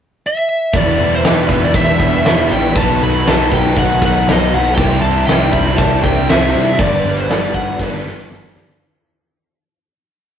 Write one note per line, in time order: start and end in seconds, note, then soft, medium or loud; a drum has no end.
0.27 0.76 E5 medium
0.73 0.97 E1 medium
0.73 1.24 E2 medium
0.73 1.00 B2 medium
0.73 1.23 E3 medium
0.73 1.00 G3 loud
0.73 1.00 B3 loud
0.73 2.74 D4 medium
0.73 0.98 E4 loud
0.73 4.74 B4 medium
0.73 1.15 D5 medium
0.73 2.75 E5 medium
0.73 2.74 G5 medium
0.73 kick loud
0.73 open hi-hat medium
0.78 0.98 E3 loud
0.99 1.23 E1 medium
0.99 1.25 B2 medium
0.99 1.26 E3 medium
0.99 1.24 G3 medium
0.99 1.25 B3 medium
0.99 1.24 E4 medium
1.15 1.27 C5 medium
1.24 1.48 E1 medium
1.24 2.24 E2 medium
1.24 2.02 B2 medium
1.24 1.72 E3 medium
1.24 1.50 G3 medium
1.24 1.50 B3 medium
1.24 1.74 D4 medium
1.24 1.48 E4 medium
1.24 1.65 B4 medium
1.24 snare loud
1.24 open hi-hat medium
1.49 1.73 E1 medium
1.49 2.00 E3 medium
1.49 1.73 G3 medium
1.49 1.74 B3 medium
1.49 1.74 E4 medium
1.49 kick medium
1.64 1.75 D5 medium
1.73 1.98 E1 medium
1.73 2.24 E3 medium
1.73 2.01 G3 medium
1.73 1.99 B3 loud
1.73 2.51 D4 medium
1.73 1.98 E4 loud
1.73 2.25 E5 medium
1.73 kick loud
1.73 open hi-hat medium
2.00 2.24 E1 medium
2.00 2.26 B2 medium
2.00 2.27 E3 medium
2.00 2.76 E3 medium
2.00 2.25 G3 medium
2.00 2.25 B3 medium
2.00 2.25 E4 medium
2.00 kick medium
2.25 2.49 E1 medium
2.25 2.75 E2 medium
2.25 2.52 B2 medium
2.25 2.75 E3 medium
2.25 2.52 G3 medium
2.25 2.51 B3 medium
2.25 2.50 E4 medium
2.25 2.52 E5 medium
2.25 snare loud
2.25 open hi-hat medium
2.50 2.74 A1 loud
2.50 2.76 B2 medium
2.50 2.75 E3 medium
2.50 2.76 G3 medium
2.50 2.75 B3 medium
2.50 2.77 D4 medium
2.50 2.75 E4 medium
2.50 2.77 G5 loud
2.75 2.99 B1 medium
2.75 3.27 B2 loud
2.75 3.27 D#3 medium
2.75 3.03 F#3 loud
2.75 3.03 B3 loud
2.75 4.76 D#4 medium
2.75 3.02 D#4 medium
2.75 3.01 A4 medium
2.75 4.76 F#5 medium
2.75 4.76 A5 medium
2.75 3.03 A5 loud
2.75 kick loud
2.75 open hi-hat medium
3.02 3.25 B1 medium
3.02 3.26 F#3 medium
3.02 4.27 A3 medium
3.02 3.27 B3 medium
3.02 3.28 D#4 medium
3.02 3.28 A4 medium
3.02 3.28 B5 medium
3.26 3.51 B1 medium
3.26 4.27 B2 medium
3.26 3.54 F#3 medium
3.26 3.54 B3 medium
3.26 3.53 D#4 medium
3.26 3.52 A4 medium
3.26 3.53 A5 loud
3.26 snare loud
3.26 open hi-hat medium
3.51 3.75 B1 medium
3.51 3.77 B3 medium
3.51 3.78 D#4 medium
3.51 3.78 A4 medium
3.51 3.78 G5 medium
3.51 kick medium
3.55 3.77 F#3 medium
3.67 snare soft
3.76 4.00 B1 medium
3.76 4.28 B2 medium
3.76 4.28 D#3 medium
3.76 4.04 F#3 medium
3.76 4.04 B3 medium
3.76 4.03 D#4 medium
3.76 4.02 A4 medium
3.76 4.01 F#5 medium
3.76 kick loud
3.76 open hi-hat medium
4.01 4.25 B1 loud
4.01 4.28 B3 medium
4.01 4.29 D#4 medium
4.01 4.29 A4 medium
4.01 4.30 F#5 loud
4.01 kick medium
4.05 4.27 F#3 medium
4.28 4.51 B1 medium
4.28 4.77 B2 medium
4.28 4.54 F#3 medium
4.28 4.78 A3 medium
4.28 4.53 B3 medium
4.28 4.52 D#4 medium
4.28 4.51 A4 medium
4.28 4.54 D#5 medium
4.28 snare loud
4.28 open hi-hat medium
4.53 4.76 B1 loud
4.53 4.77 F#3 medium
4.53 4.77 B3 medium
4.53 4.77 D#4 medium
4.53 4.76 A4 medium
4.53 4.74 F#5 medium
4.75 5.01 C2 medium
4.75 5.27 C3 loud
4.75 5.52 E3 medium
4.75 8.77 D4 medium
4.75 6.77 C5 medium
4.75 6.77 E5 medium
4.75 5.01 G5 loud
4.75 8.78 G5 medium
4.75 kick loud
4.75 open hi-hat medium
4.79 5.06 G3 medium
4.79 5.04 C4 medium
4.79 5.03 E4 loud
5.02 5.26 C2 medium
5.02 5.29 C4 medium
5.02 5.29 E4 medium
5.02 5.26 A5 medium
5.06 5.29 G3 medium
5.27 5.51 C2 medium
5.27 5.77 C3 medium
5.27 5.55 G3 medium
5.27 5.53 C4 medium
5.27 5.78 D4 medium
5.27 5.52 E4 medium
5.27 5.53 G5 medium
5.27 snare loud
5.27 open hi-hat medium
5.52 5.76 C2 medium
5.52 6.03 E3 medium
5.52 5.79 G3 medium
5.52 5.79 C4 medium
5.52 5.80 E4 medium
5.52 5.78 B5 loud
5.52 kick medium
5.67 snare soft
5.77 6.02 C2 loud
5.77 6.28 C3 medium
5.77 6.05 G3 loud
5.77 6.03 C4 loud
5.77 6.54 D4 medium
5.77 6.03 A5 medium
5.77 kick loud
5.77 open hi-hat medium
5.81 6.02 E4 medium
6.03 6.27 C2 medium
6.03 6.79 E3 medium
6.03 6.29 G3 medium
6.03 6.29 C4 medium
6.03 6.29 E4 medium
6.03 6.27 G5 medium
6.03 kick medium
6.29 6.53 C2 medium
6.29 6.78 C3 medium
6.29 6.56 G3 medium
6.29 6.54 C4 medium
6.29 6.53 E4 medium
6.29 6.79 E5 medium
6.29 snare loud
6.29 open hi-hat medium
6.54 6.78 C3 loud
6.54 6.80 G3 medium
6.54 6.79 C4 medium
6.54 7.29 D4 medium
6.54 6.78 E4 medium
6.78 7.02 G1 medium
6.78 7.30 G2 loud
6.78 7.29 D3 loud
6.78 7.06 G3 loud
6.78 7.05 B3 loud
6.78 7.04 D4 loud
6.78 8.79 B4 medium
6.78 7.19 D5 loud
6.78 8.79 F#5 medium
6.78 kick loud
6.78 open hi-hat medium
7.04 7.28 G1 medium
7.04 7.30 G3 medium
7.04 7.31 B3 medium
7.04 7.31 D4 medium
7.08 7.31 D3 medium
7.17 7.30 C5 medium
7.29 7.53 G1 medium
7.29 8.30 G2 medium
7.29 7.80 D3 medium
7.29 7.56 G3 medium
7.29 7.55 B3 medium
7.29 7.54 D4 medium
7.29 7.53 D5 medium
7.29 snare loud
7.29 open hi-hat medium
7.54 7.78 G1 medium
7.54 7.80 G3 medium
7.54 7.81 B3 medium
7.54 7.81 D4 medium
7.54 7.81 F#5 medium
7.54 kick medium
7.79 8.03 G1 medium
7.79 8.31 G2 medium
7.79 8.28 D3 medium
7.79 8.05 G3 medium
7.79 8.05 B3 loud
7.79 8.04 D4 loud
7.79 8.28 B4 medium
7.79 kick loud
7.79 snare medium
7.94 snare soft
8.05 8.29 G1 medium
8.05 8.31 D3 medium
8.05 8.30 G3 medium
8.05 8.30 B3 medium
8.05 8.30 D4 medium
8.05 snare medium
8.18 snare medium
8.29 8.54 G1 medium
8.29 8.80 G2 medium
8.29 8.79 D3 medium
8.29 8.55 G3 medium
8.29 8.55 B3 medium
8.29 8.53 D4 medium
8.29 snare medium
8.44 snare medium
8.54 8.79 G2 loud
8.54 8.80 G3 medium
8.54 8.80 B3 medium
8.54 8.79 D4 medium
8.54 snare loud
8.58 8.81 D3 medium
8.69 snare medium